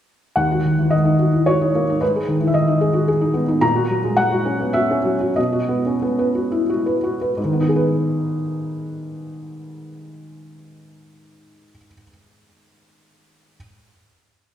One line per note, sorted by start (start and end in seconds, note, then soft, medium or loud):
0.36 1.97 D#2 soft
0.36 0.92 F#5 medium
0.52 0.74 F#4 soft
0.65 0.87 D#3 soft
0.78 0.92 E3 soft
0.90 1.14 D#3 soft
0.90 1.47 D#5 medium
1.05 1.28 D#4 soft
1.19 1.42 F#4 soft
1.33 1.47 E4 soft
1.46 1.69 F#4 soft
1.46 2.01 C#5 medium
1.61 1.83 D#4 soft
1.75 1.96 A#3 soft
1.89 2.02 D#4 soft
2.01 3.58 G#2 soft
2.01 2.47 B4 medium
2.16 2.36 G#4 soft
2.28 2.49 D#3 soft
2.40 2.54 E3 soft
2.47 2.54 E5 medium
2.54 2.76 D#3 soft
2.54 3.35 D#5 medium
2.67 2.89 D#4 soft
2.81 3.02 G#4 soft
2.93 3.07 F#4 soft
3.08 3.30 G#4 soft
3.21 3.43 D#4 soft
3.34 3.56 B3 soft
3.48 3.62 D#4 soft
3.61 5.33 A#2 medium
3.61 4.17 A#5 medium
3.75 3.98 F#4 soft
3.90 4.12 F#3 soft
4.04 4.18 G#3 soft
4.17 4.40 F#3 soft
4.17 4.75 F#5 medium
4.31 4.54 F#4 soft
4.45 4.69 C#4 soft
4.60 4.75 B3 soft
4.73 4.99 F#4 soft
4.73 5.36 E5 medium
4.91 5.15 C#4 soft
5.05 5.31 F#3 soft
5.20 5.37 F#4 soft
5.36 7.34 B2 soft
5.36 6.69 D#5 medium
5.52 5.79 F#4 soft
5.68 5.96 B3 soft
5.86 6.03 C#4 soft
6.02 6.29 B3 soft
6.19 6.46 B4 soft
6.35 6.62 F#4 soft
6.52 6.69 E4 soft
6.69 6.97 F#4 soft
6.86 7.14 B4 soft
7.03 7.31 F#4 soft
7.21 7.38 B4 soft
7.37 11.69 G#2 medium
7.45 11.77 D#3 soft
7.53 11.85 B3 soft
7.60 11.93 D#4 soft
7.69 12.01 G#4 soft
7.76 12.08 B4 soft